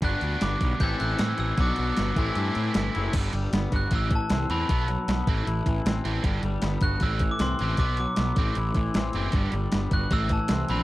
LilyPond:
<<
  \new Staff \with { instrumentName = "Glockenspiel" } { \time 4/4 \key a \dorian \tempo 4 = 155 fis'''4 d'''4 g'''8 fis'''8 e'''8 e'''8 | d'''2. r4 | r4. fis'''8 e'''8 a''4 b''8~ | b''2.~ b''8 r8 |
r4. fis'''8 e'''8. d'''16 c'''4 | d'''8 d'''4 r2 r8 | r4. fis'''8 e'''8 a''4 b''8 | }
  \new Staff \with { instrumentName = "Clean electric guitar" } { \clef bass \time 4/4 \key a \dorian <g b d' fis'>2 <a, e c' e' a'>2 | <b, fis b d' fis'>4. <a, e a c' e'>2 <a, e a c' e'>8 | g8 g8 b8 fis'8 a,8 e8 c'8 e8 | b,8 fis8 b8 a,8 e'8 e8 c'8 e8 |
g8 g8 b8 fis'8 a,8 e8 c'8 e8 | b,8 fis8 b8 a,8 e'8 e8 c'8 e8 | g8 g8 b8 fis'8 a,8 e8 c'8 e8 | }
  \new Staff \with { instrumentName = "Distorted electric guitar" } { \clef bass \time 4/4 \key a \dorian <g, d g b d'>2 <a, e c' e' a'>2 | <b, fis b d' fis'>4. <a, e a c' e'>2~ <a, e a c' e'>8 | <g, d g>8 <g, d>8 <g, d>8 <g, d>8 <a, e c'>8 <a, e>8 <a, e>8 <a, e c'>8 | <b, fis b>8 <b, fis>8 <b, fis>8 <a, e c'>8 <a, e>8 <a, e>8 <a, e>8 <a, e c'>8 |
<g, d g>8 <g, d>8 <g, d>8 <g, d>8 <a, e c'>8 <a, e>8 <a, e>8 <a, e c'>8 | <b, fis b>8 <b, fis>8 <b, fis>8 <a, e c'>8 <a, e>8 <a, e>8 <a, e>8 <a, e c'>8 | <g, d g>8 <g, d>8 <g, d>8 <g, d>8 <a, e c'>8 <a, e>8 <a, e>8 <a, e c'>8 | }
  \new Staff \with { instrumentName = "Picked electric bass" } { \clef bass \time 4/4 \key a \dorian g,,8 d,8 g,,8 b,,8 a,,8 a,,8 a,8 a,,8 | b,,8 b,,8 g,,8 a,,8 g,8 a,8 g,,8 fis,,8 | g,,8 g,,8 g,,8 g,,8 a,,4 c,8 e,8 | b,,4 b,,8 a,,8 a,,8 a,,8 a,,8 a,,8 |
g,,8 g,,8 g,,8 g,,8 a,,4 c,8 a,,8 | b,,4 b,,8 a,,8 a,,8 a,,8 a,,8 fis,,8 | g,,8 g,,8 g,,8 g,,8 a,,4 c,8 bes,,8 | }
  \new DrumStaff \with { instrumentName = "Drums" } \drummode { \time 4/4 <hh bd>8 hh8 <hh sn>8 <hh bd>8 <hh bd>8 hh8 <hh sn>8 hh8 | <hh bd>8 hh8 <hh sn>8 <hh bd>8 hh8 hh8 <hh sn>8 hh8 | <cymc hh bd>8 hh8 <hh sn>8 <hh bd>8 <hh bd>8 <hh bd>8 <hh sn>8 hh8 | <hh bd>8 hh8 <hh sn>8 <hh bd>8 hh8 <hh bd>8 <hh sn>8 hh8 |
<hh bd>8 hh8 <hh sn>8 <hh bd>8 <hh bd>8 <hh bd>8 <hh sn>8 hh8 | <hh bd>8 hh8 <hh sn>8 <hh bd>8 hh8 <hh bd>8 <hh sn>8 hh8 | <hh bd>8 hh8 <hh sn>8 <hh bd>8 <hh bd>8 <hh bd>8 <hh sn>8 hh8 | }
>>